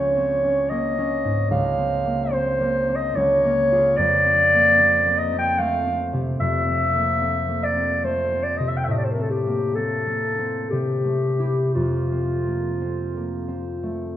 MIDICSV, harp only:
0, 0, Header, 1, 2, 480
1, 0, Start_track
1, 0, Tempo, 815217
1, 891, Time_signature, 3, 2, 24, 8
1, 4246, Tempo, 847458
1, 5686, Tempo, 947867
1, 6166, Tempo, 1038062
1, 7769, End_track
2, 0, Start_track
2, 0, Title_t, "Harp"
2, 0, Program_c, 0, 46
2, 0, Note_on_c, 0, 37, 48
2, 0, Note_on_c, 0, 58, 39
2, 0, Note_on_c, 0, 61, 41
2, 94, Note_on_c, 0, 60, 35
2, 252, Note_off_c, 0, 61, 0
2, 259, Note_on_c, 0, 61, 40
2, 369, Note_off_c, 0, 60, 0
2, 411, Note_off_c, 0, 58, 0
2, 418, Note_on_c, 0, 58, 40
2, 572, Note_off_c, 0, 61, 0
2, 579, Note_on_c, 0, 61, 43
2, 733, Note_on_c, 0, 44, 38
2, 880, Note_off_c, 0, 37, 0
2, 887, Note_on_c, 0, 37, 54
2, 910, Note_off_c, 0, 44, 0
2, 1050, Note_on_c, 0, 60, 42
2, 1203, Note_off_c, 0, 58, 0
2, 1210, Note_on_c, 0, 58, 38
2, 1363, Note_off_c, 0, 60, 0
2, 1370, Note_on_c, 0, 60, 41
2, 1481, Note_off_c, 0, 58, 0
2, 1535, Note_on_c, 0, 58, 35
2, 1695, Note_off_c, 0, 60, 0
2, 1702, Note_on_c, 0, 60, 43
2, 1812, Note_off_c, 0, 58, 0
2, 1857, Note_off_c, 0, 37, 0
2, 1864, Note_on_c, 0, 37, 52
2, 1882, Note_off_c, 0, 60, 0
2, 2026, Note_on_c, 0, 58, 43
2, 2190, Note_on_c, 0, 65, 42
2, 2194, Note_on_c, 0, 68, 44
2, 2343, Note_on_c, 0, 41, 54
2, 2358, Note_off_c, 0, 61, 0
2, 2359, Note_off_c, 0, 37, 0
2, 2359, Note_off_c, 0, 58, 0
2, 2363, Note_off_c, 0, 68, 0
2, 2503, Note_on_c, 0, 60, 42
2, 2670, Note_on_c, 0, 58, 37
2, 2817, Note_off_c, 0, 60, 0
2, 2824, Note_on_c, 0, 60, 38
2, 2931, Note_off_c, 0, 58, 0
2, 2980, Note_on_c, 0, 58, 36
2, 3129, Note_off_c, 0, 60, 0
2, 3136, Note_on_c, 0, 60, 38
2, 3242, Note_off_c, 0, 58, 0
2, 3292, Note_on_c, 0, 57, 42
2, 3446, Note_off_c, 0, 60, 0
2, 3453, Note_on_c, 0, 60, 40
2, 3610, Note_on_c, 0, 48, 39
2, 3763, Note_off_c, 0, 41, 0
2, 3770, Note_on_c, 0, 41, 46
2, 3786, Note_off_c, 0, 48, 0
2, 3924, Note_off_c, 0, 60, 0
2, 3931, Note_on_c, 0, 60, 39
2, 4091, Note_on_c, 0, 58, 37
2, 4238, Note_off_c, 0, 60, 0
2, 4245, Note_on_c, 0, 60, 37
2, 4356, Note_off_c, 0, 58, 0
2, 4402, Note_on_c, 0, 58, 35
2, 4477, Note_off_c, 0, 65, 0
2, 4549, Note_off_c, 0, 60, 0
2, 4556, Note_on_c, 0, 60, 35
2, 4668, Note_off_c, 0, 58, 0
2, 4707, Note_off_c, 0, 57, 0
2, 4714, Note_on_c, 0, 57, 36
2, 4866, Note_off_c, 0, 60, 0
2, 4873, Note_on_c, 0, 60, 36
2, 5030, Note_on_c, 0, 48, 35
2, 5192, Note_on_c, 0, 45, 44
2, 5210, Note_off_c, 0, 48, 0
2, 5213, Note_off_c, 0, 41, 0
2, 5356, Note_off_c, 0, 60, 0
2, 5363, Note_on_c, 0, 60, 37
2, 5524, Note_on_c, 0, 58, 31
2, 5686, Note_off_c, 0, 60, 0
2, 5692, Note_on_c, 0, 60, 33
2, 5795, Note_off_c, 0, 58, 0
2, 5845, Note_on_c, 0, 58, 29
2, 6002, Note_off_c, 0, 60, 0
2, 6008, Note_on_c, 0, 60, 31
2, 6117, Note_off_c, 0, 58, 0
2, 6175, Note_on_c, 0, 48, 39
2, 6183, Note_off_c, 0, 45, 0
2, 6318, Note_off_c, 0, 57, 0
2, 6324, Note_on_c, 0, 57, 31
2, 6485, Note_on_c, 0, 64, 29
2, 6488, Note_on_c, 0, 67, 28
2, 6652, Note_on_c, 0, 41, 38
2, 6665, Note_off_c, 0, 64, 0
2, 6668, Note_off_c, 0, 48, 0
2, 6817, Note_off_c, 0, 60, 0
2, 6822, Note_on_c, 0, 60, 29
2, 6977, Note_on_c, 0, 58, 25
2, 7137, Note_off_c, 0, 60, 0
2, 7142, Note_on_c, 0, 60, 26
2, 7247, Note_off_c, 0, 58, 0
2, 7304, Note_on_c, 0, 58, 21
2, 7445, Note_off_c, 0, 60, 0
2, 7451, Note_on_c, 0, 60, 28
2, 7566, Note_off_c, 0, 58, 0
2, 7608, Note_off_c, 0, 57, 0
2, 7613, Note_on_c, 0, 57, 29
2, 7765, Note_off_c, 0, 60, 0
2, 7769, Note_off_c, 0, 41, 0
2, 7769, Note_off_c, 0, 57, 0
2, 7769, Note_off_c, 0, 67, 0
2, 7769, End_track
0, 0, End_of_file